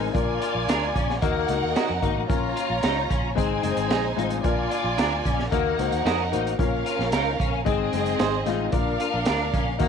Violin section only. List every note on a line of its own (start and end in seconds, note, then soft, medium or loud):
0.00 0.12 D#4 medium
0.00 0.12 C5 medium
0.00 0.11 G#5 loud
0.12 1.18 F4 medium
0.12 1.19 D5 medium
0.12 1.18 G#5 medium
1.20 2.26 D#4 medium
1.20 2.26 A#4 medium
1.20 2.26 F#5 loud
2.27 3.33 F4 medium
2.27 3.34 C#5 medium
2.27 3.33 A#5 medium
3.36 4.42 D#4 medium
3.36 4.41 C5 medium
3.36 4.41 G#5 medium
4.42 5.48 F4 medium
4.42 5.48 D5 medium
4.42 5.48 G#5 medium
5.50 6.56 D#4 medium
5.50 6.56 A#4 medium
5.50 6.56 F#5 loud
6.58 7.64 C#4 medium
6.58 7.64 A#4 medium
6.58 7.64 F5 medium
7.65 8.71 C4 medium
7.65 8.71 G#4 medium
7.65 8.71 D#5 loud
8.72 9.78 D4 medium
8.72 9.78 A#4 medium
8.72 9.78 F5 medium
9.79 9.88 D#4 medium
9.79 9.88 A#4 medium
9.79 9.88 F#5 medium